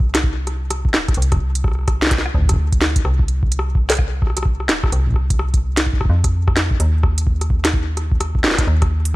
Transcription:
0.00 0.95 C2 medium
0.00 kick loud
0.15 cross-stick medium
0.15 snare loud
0.15 closed hi-hat medium
0.24 kick loud
0.47 cross-stick medium
0.47 closed hi-hat medium
0.70 cross-stick medium
0.70 closed hi-hat medium
0.85 kick loud
0.94 1.11 D1 medium
0.94 snare loud
1.08 kick loud
1.08 cross-stick soft
1.08 closed hi-hat soft
1.14 2.29 C2 medium
1.14 closed hi-hat medium
1.22 closed hi-hat medium
1.32 kick loud
1.32 cross-stick medium
1.32 closed hi-hat medium
1.34 kick medium
1.36 kick medium
1.39 kick medium
1.55 closed hi-hat medium
1.64 kick loud
1.64 cross-stick medium
1.68 cross-stick soft
1.71 cross-stick soft
1.75 cross-stick soft
1.79 cross-stick soft
1.81 cross-stick soft
1.83 cross-stick soft
1.85 cross-stick soft
1.88 kick loud
1.88 cross-stick medium
1.88 closed hi-hat medium
2.02 snare loud
2.07 snare medium
2.11 kick loud
2.11 snare medium
2.11 closed hi-hat medium
2.18 snare medium
2.26 cross-stick medium
2.35 3.00 D2 loud
2.35 kick soft
2.38 kick medium
2.42 kick medium
2.45 kick medium
2.49 kick medium
2.49 cross-stick medium
2.49 closed hi-hat medium
2.51 kick medium
2.54 kick medium
2.56 kick loud
2.73 kick loud
2.73 closed hi-hat medium
2.81 cross-stick soft
2.81 snare loud
2.96 kick loud
2.96 closed hi-hat medium
3.05 4.70 C2 medium
3.05 cross-stick medium
3.19 kick loud
3.28 closed hi-hat medium
3.43 kick loud
3.52 closed hi-hat medium
3.59 cross-stick medium
3.75 kick loud
3.90 snare loud
3.90 closed hi-hat medium
3.91 closed hi-hat medium
3.95 closed hi-hat soft
3.97 kick loud
3.97 cross-stick medium
3.97 closed hi-hat soft
4.22 kick loud
4.22 cross-stick soft
4.27 cross-stick soft
4.30 cross-stick soft
4.37 cross-stick soft
4.37 cross-stick medium
4.37 closed hi-hat medium
4.43 kick loud
4.43 cross-stick medium
4.60 cross-stick soft
4.69 4.86 D1 medium
4.69 snare loud
4.69 closed hi-hat soft
4.83 kick loud
4.83 cross-stick medium
4.86 cross-stick medium
4.88 cross-stick soft
4.90 cross-stick soft
4.92 6.04 C2 medium
4.92 cross-stick soft
4.92 closed hi-hat medium
4.96 cross-stick soft
5.00 cross-stick soft
5.03 kick soft
5.03 cross-stick soft
5.09 kick medium
5.10 kick medium
5.12 kick medium
5.14 kick medium
5.14 cross-stick soft
5.30 kick loud
5.30 closed hi-hat medium
5.39 cross-stick medium
5.54 kick loud
5.54 closed hi-hat medium
5.77 snare loud
5.77 closed hi-hat medium
5.86 kick medium
5.93 kick medium
6.01 kick medium
6.01 cross-stick medium
6.05 kick loud
6.10 6.75 F2 loud
6.24 kick loud
6.24 cross-stick soft
6.24 closed hi-hat medium
6.48 kick loud
6.48 cross-stick medium
6.57 snare loud
6.57 closed hi-hat soft
6.71 kick loud
6.80 8.45 D#2 medium
6.80 cross-stick soft
6.80 closed hi-hat medium
7.03 kick loud
7.03 cross-stick medium
7.18 closed hi-hat medium
7.27 kick loud
7.41 cross-stick soft
7.41 closed hi-hat soft
7.50 kick loud
7.65 cross-stick medium
7.65 snare loud
7.65 closed hi-hat medium
7.74 kick loud
7.97 cross-stick medium
7.97 closed hi-hat soft
8.12 kick loud
8.20 cross-stick medium
8.20 closed hi-hat medium
8.35 kick medium
8.44 8.61 F1 medium
8.44 snare loud
8.48 snare medium
8.51 snare medium
8.55 kick loud
8.55 cross-stick soft
8.55 snare medium
8.58 snare soft
8.58 closed hi-hat medium
8.61 snare soft
8.63 snare soft
8.65 9.16 D#2 medium
8.65 snare soft
8.82 kick loud
8.82 cross-stick medium
8.82 closed hi-hat soft
9.05 closed hi-hat medium

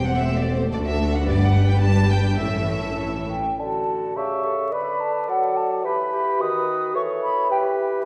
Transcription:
0.00 0.73 E1 soft
0.00 0.73 E2 soft
0.00 0.14 G3 soft
0.00 0.69 C4 soft
0.00 0.69 G4 soft
0.00 0.69 C5 soft
0.06 0.19 F#5 medium
0.18 1.24 A3 soft
0.18 0.37 E5 medium
0.37 0.55 D5 medium
0.55 0.62 C5 medium
0.72 1.26 D2 medium
0.72 1.27 D2 medium
0.72 2.38 D4 soft
0.72 1.24 F#4 medium
0.72 1.24 A4 soft
0.72 0.78 D5 medium
0.85 1.13 E5 medium
1.14 1.28 F#5 medium
1.26 2.42 G1 soft
1.26 2.42 G2 medium
1.26 2.38 G3 soft
1.26 2.37 G4 medium
1.26 2.38 B4 medium
1.26 1.41 D5 medium
1.40 1.69 F#5 medium
1.69 1.83 G5 medium
1.82 2.11 A5 medium
2.11 2.41 G5 medium
2.40 3.37 A1 soft
2.40 3.37 A2 soft
2.40 3.35 E3 soft
2.40 3.35 C#4 soft
2.40 3.35 E4 soft
2.40 3.35 A4 soft
2.40 3.28 E5 medium
3.30 3.61 G5 soft
3.59 4.13 D3 soft
3.59 4.18 F#4 soft
3.59 4.13 A4 soft
3.59 4.18 A5 soft
4.16 4.74 C#3 soft
4.16 4.46 G4 soft
4.16 4.74 E5 soft
4.16 4.73 C#6 medium
4.44 4.74 A4 soft
4.72 5.30 D3 soft
4.72 5.30 B4 soft
4.72 5.87 D5 soft
4.72 5.02 B5 medium
5.00 5.29 A5 medium
5.29 5.86 F#3 soft
5.29 5.83 A4 soft
5.29 5.58 F#5 medium
5.57 5.85 A5 medium
5.84 6.42 E3 medium
5.84 5.97 G4 soft
5.84 6.40 B4 soft
5.84 6.43 B5 medium
6.12 6.41 G4 medium
6.40 6.95 D#3 medium
6.40 6.96 F#4 medium
6.40 6.97 B4 soft
6.40 6.95 D#6 medium
6.95 8.02 E3 medium
6.95 7.52 A4 soft
6.95 7.52 C#5 soft
6.95 7.02 C#6 medium
7.23 7.49 B5 medium
7.50 8.04 G4 medium
7.50 8.03 B4 medium
7.50 7.57 G5 medium

